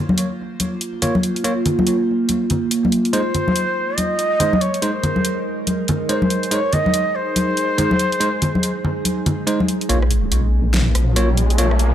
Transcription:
Already playing: A#3 F4 C5
0.09 high conga
0.18 closed hi-hat
0.60 closed hi-hat, high conga
0.81 closed hi-hat
1.02 A#3 F4 C#5, closed hi-hat, low conga
1.15 high conga
1.23 closed hi-hat
1.36 closed hi-hat
1.44 A#3 F4 C#5, closed hi-hat
1.66 closed hi-hat, low conga
1.79 high conga
1.87 closed hi-hat
2.29 closed hi-hat, high conga
2.50 closed hi-hat, low conga
2.71 closed hi-hat
2.85 high conga
2.92 closed hi-hat
3.05 closed hi-hat
3.13 G#3 D#4 A#4 C5, closed hi-hat
3.35 closed hi-hat, low conga
3.48 high conga
3.56 closed hi-hat
3.97 D#5, closed hi-hat, high conga
4.19 closed hi-hat
4.40 G#3 D#4 C5, closed hi-hat, low conga
4.53 high conga
4.61 C#5, closed hi-hat
4.74 closed hi-hat
4.82 G#3 D#4 C5, closed hi-hat
5.03 closed hi-hat, low conga
5.16 high conga
5.25 closed hi-hat
5.67 closed hi-hat, high conga
5.88 closed hi-hat, low conga
6.09 G#3 D#4 C5 C#5, closed hi-hat
6.13 C5
6.22 high conga
6.30 closed hi-hat
6.43 closed hi-hat
6.51 G#3 D#4 G#4 C5 C#5, closed hi-hat
6.73 D#5, closed hi-hat, low conga
6.86 high conga
6.94 closed hi-hat
7.15 C5
7.36 closed hi-hat, high conga
7.57 closed hi-hat
7.78 G#3 D#4 C5, closed hi-hat, low conga
7.91 high conga
7.99 closed hi-hat
8.12 closed hi-hat
8.20 G#3 D#4 C5, closed hi-hat
8.42 closed hi-hat, low conga
8.55 high conga
8.63 closed hi-hat
8.85 low conga
9.05 closed hi-hat, high conga
9.26 closed hi-hat, low conga
9.47 G#3 D#4 C5, closed hi-hat
9.60 high conga
9.68 closed hi-hat
9.81 closed hi-hat
9.89 A#1 A#3 C#4 F4 C#5, closed hi-hat, riser
10.02 cross-stick
10.11 closed hi-hat
10.32 A#1, closed hi-hat
10.74 snare, closed hi-hat
10.95 A#1, cross-stick, closed hi-hat
11.16 A#3 F4 C#5, closed hi-hat
11.37 closed hi-hat
11.50 closed hi-hat
11.58 A#3 F4 C#5, closed hi-hat
11.71 cross-stick
11.79 closed hi-hat

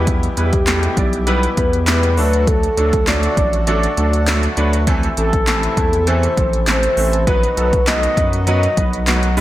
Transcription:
Already playing: E2 B2 E3 G3 B3 E4 G4 B4
0.07 kick, closed hi-hat
0.23 closed hi-hat
0.37 E2 G3 B3 E4 G4 B4, closed hi-hat
0.53 kick, closed hi-hat
0.67 G3 B3 E4 A4, snare, clap, closed hi-hat
0.83 closed hi-hat
0.97 B1 G3 B3 E4 D5, kick, closed hi-hat
1.13 closed hi-hat
1.27 G3 B3 E4 B4, closed hi-hat
1.43 closed hi-hat
1.57 E2 G3 B3 E4 B4, kick, closed hi-hat
1.73 closed hi-hat
1.87 G3 B3 E4 B4, snare, clap, closed hi-hat
2.03 closed hi-hat
2.17 D2 D3 F#3 A3 D4 F#4 A4, open hi-hat
2.33 closed hi-hat
2.47 A4, kick, closed hi-hat
2.63 closed hi-hat
2.77 D2 F#3 A3 D4 A4, closed hi-hat
2.93 kick, closed hi-hat
3.07 F#3 A3 D4 A4 D5, snare, clap, closed hi-hat
3.23 closed hi-hat
3.37 A1 F#3 A3 D4 A4, kick, closed hi-hat
3.53 closed hi-hat
3.67 F#3 A3 D4 A4 D5, closed hi-hat
3.83 closed hi-hat
3.97 D2 F#3 A3 D4 A4, closed hi-hat
4.13 closed hi-hat
4.27 F#3 A3 D4 A4, snare, clap, closed hi-hat
4.43 closed hi-hat
4.57 D2 F#3 A3 D4 B4, closed hi-hat
4.73 closed hi-hat
4.87 E3 A3 C4 E4 A4, kick, closed hi-hat
5.03 closed hi-hat
5.17 A1 E3 A3 C4 A4, closed hi-hat
5.33 kick, closed hi-hat
5.47 E3 A3 C4 A4, snare, clap, closed hi-hat
5.63 closed hi-hat
5.77 E2 E3 A3 C4 E4, kick, closed hi-hat
5.93 closed hi-hat
6.07 E3 A3 C4 A4 C5, closed hi-hat
6.23 closed hi-hat
6.37 A1 E3 A3 C4 A4, kick, closed hi-hat
6.53 closed hi-hat
6.67 E3 A3 C4 A4 C5, snare, clap, closed hi-hat
6.83 closed hi-hat
6.97 A1 E3 A3 C4 A4, open hi-hat
7.13 closed hi-hat
7.27 F#3 B3 D#4 F#4 B4, kick, closed hi-hat
7.43 closed hi-hat
7.57 B1 F#3 B3 D#4 A4, closed hi-hat
7.73 kick, closed hi-hat
7.87 F#3 B3 D#4 A4 D#5, snare, clap, closed hi-hat
8.03 closed hi-hat
8.17 F#2 F#3 B3 D#4 B4, kick, closed hi-hat
8.33 closed hi-hat
8.47 F#3 B3 D#4 B4 D#5, closed hi-hat
8.63 closed hi-hat
8.77 B1 F#3 B3 D#4 B4, kick, closed hi-hat
8.93 closed hi-hat
9.07 F#3 B3 D#4 B4, snare, clap, closed hi-hat
9.23 closed hi-hat
9.37 E2 E3 G3 B3 E4 G4 B4, open hi-hat

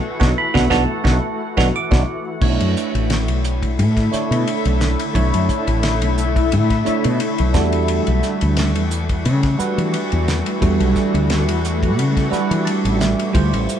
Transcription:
Already playing: E3 A3 F#4
0.20 B1 B3 D4 F#4, kick, snare
0.38 B5
0.54 B1 B3 D4 F#4, kick, snare
0.70 B1 B3 D4 F#4 A5, kick, snare
1.04 B1 B3 D4 F#4, kick, snare
1.57 B1 B3 D4 F#4, kick, snare
1.76 D6
1.91 B1 B3 D4 F#4, kick, snare
2.41 B1 D3 A3 D4 E4 C#5, kick, crash
2.60 F#2, ride
2.77 hi-hat pedal
2.95 A1, ride
3.10 snare, ride
3.28 B1, ride
3.44 hi-hat pedal
3.63 kick, ride
3.79 A2, ride
3.97 kick, snare, ride
4.11 A3 D4 E4 C#5, muted fretless electric bass stroke, snare, hi-hat pedal
4.31 B2, ride
4.48 ride
4.65 B1, ride
4.81 snare, hi-hat pedal
4.99 ride
5.13 B1 A3 D4 E4 C#5, kick, ride
5.34 F#2, ride
5.49 kick, hi-hat pedal
5.67 A1, ride
5.83 snare, ride
6.02 B1, ride
6.18 hi-hat pedal
6.36 kick, ride
6.52 A2, ride
6.70 kick, snare, ride
6.85 A3 D4 E4 C#5, muted fretless electric bass stroke, hi-hat pedal
7.04 B2, ride
7.20 ride
7.38 B1, ride
7.53 E2 E3 G3 D4 F#4 A4, kick, snare, hi-hat pedal
7.73 ride
7.88 ride
8.07 B1, ride
8.23 snare, hi-hat pedal
8.41 D2, ride
8.57 snare, ride
8.75 E2, ride
8.91 hi-hat pedal
9.09 kick, ride
9.25 C#3, ride
9.43 kick, snare, ride
9.57 G3 D4 F#4 B4, muted fretless electric bass stroke, hi-hat pedal
9.78 E3, ride
9.94 ride
10.12 E2, ride
10.28 F#4, snare, hi-hat pedal
10.46 ride
10.61 E2 G3 D4 F#4 A4, kick, ride
10.80 B1, ride
10.96 kick, snare, hi-hat pedal
11.14 D2, ride
11.30 snare, ride
11.48 E2, ride
11.64 hi-hat pedal
11.83 kick, ride
11.99 C#3, ride
12.17 kick, snare, ride
12.30 G3 D4 F#4 B4, muted fretless electric bass stroke, snare, hi-hat pedal
12.51 E3, ride
12.65 A5, ride
12.85 A1, ride
13.00 E5, snare, hi-hat pedal
13.19 ride
13.32 D2 C3 F3 G3 E4 F4 C5, kick, ride
13.53 A1, ride
13.69 hi-hat pedal

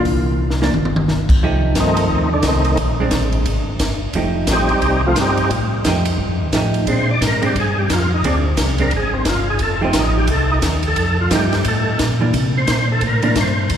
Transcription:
Already playing: E3 A#3 D4
0.05 C2, kick, open hi-hat
0.50 snare
0.62 E3 A#3 D4, snare
0.73 G1, mid tom
0.85 mid tom
0.96 mid tom
1.08 snare
1.29 kick, crash
1.42 C2 F3 A3 D#4 G4, kick
1.75 G2, kick, snare, hi-hat pedal, ride
1.80 D#3 A3 C4 D#4
1.97 ride
2.10 D#2, kick
2.34 D3 D4
2.43 C2, kick, snare, hi-hat pedal, ride
2.48 D#3 A3 C4 D#4
2.64 ride
2.77 A#1, kick, ride
3.00 G#3 C4 D4
3.11 A1, kick, snare, hi-hat pedal, ride
3.32 ride
3.46 G#1, kick, ride
3.79 G1, kick, snare, hi-hat pedal, ride
4.00 G1
4.13 F1 F3 A3 D#4 G4, kick, ride
4.47 A1 F3 A3, kick, snare, hi-hat pedal, ride
4.51 G3 C4 D#4 G4
4.68 A1, ride
4.82 C2, kick, ride
5.07 F3 A3 C4 F4
5.16 G2, kick, snare, hi-hat pedal, ride
5.21 G3 C4 D#4 G4
5.37 ride
5.50 A2, kick, ride
5.84 F2 F3 A3 D#4 G4, kick, snare, hi-hat pedal, ride
6.05 ride
6.18 G2, kick
6.29 F2
6.40 D#2
6.53 A2 F3 A3 D#4 G4, kick, snare, hi-hat pedal, ride
6.74 ride
6.86 A#2 G#3 C4 D4, kick, ride
6.93 C5
7.11 D5
7.21 G#2, kick, snare, hi-hat pedal, ride
7.27 A#4
7.42 G#3 C4 D4, ride
7.46 G4
7.55 G2, kick, ride
7.60 G#4
7.79 G4
7.89 F2 F4, kick, snare, hi-hat pedal, ride
8.14 D#4
8.23 D2 G#3 C4 D4, kick, ride
8.57 C2, kick, snare, hi-hat pedal, ride
8.78 G#3 C4 D4 A#4, ride
8.91 G#1, kick, ride
8.97 G#4
9.14 C4
9.25 G1 F4, kick, snare, hi-hat pedal, ride
9.50 G#4
9.59 F1 A4, kick, ride
9.81 F3 A3 C4 D#4 G4
9.93 A1, kick, snare, hi-hat pedal, ride
9.99 D#4
10.17 G4
10.27 C2 A4, kick, ride
10.52 D#4
10.62 D#2, kick, snare, hi-hat pedal, ride
10.83 ride
10.88 A4
10.96 F2, kick, ride
11.21 F4
11.30 G2 F3 A3 D#4 G4, kick, snare, hi-hat pedal, ride
11.35 G4
11.52 snare, ride
11.65 A2 A4, kick, ride
11.99 A#2, kick, snare, hi-hat pedal, ride
12.21 E3 A#3 D4
12.33 C3, kick, ride
12.58 C5
12.67 A#2, kick, snare, hi-hat pedal, ride
12.92 A4
13.01 A2, kick, ride
13.07 A#4
13.22 E3 A#3 D4, ride
13.35 G2, kick, snare, hi-hat pedal, ride
13.41 C5
13.70 E2, kick, ride

